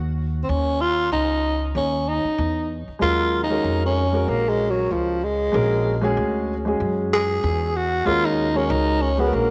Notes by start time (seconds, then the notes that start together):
Already playing: D#2
0.43 C4
0.49 D#2 C#4
0.81 F4
1.12 C#2 D#4
1.75 D#2 C#4
2.09 D#4
2.25 muted upright bass stroke
2.38 E2
2.88 muted upright bass stroke
2.99 D#2 F#3 G#3 C#4 F4 A#4
3.44 D#4
3.49 G#3 C#4 F#4 A#4
3.64 F2
3.86 C#4
4.12 G#3 C#4 F#4 A#4
4.28 A#1 A#3
4.49 G#3
4.70 F#3
4.91 C#2 F3
5.24 G#3
5.52 A#1 G#3 C#4 F#4 A#4
6.01 G#3 C#4 F#4 G#4
6.17 D2
6.65 G#3 C#4 F#4 G#4
6.80 F#2
7.13 G#4
7.44 E2
7.76 F#4
8.05 D#2 G#3 C#4 F4 F#4 A#4
8.25 D#4
8.54 G#3 C#4 F#4 A#4
8.70 C#2 D#4
9.02 C#4
9.17 G#3 B3 C#4 F#4 G#4
9.27 A#4
9.33 A#1 A#3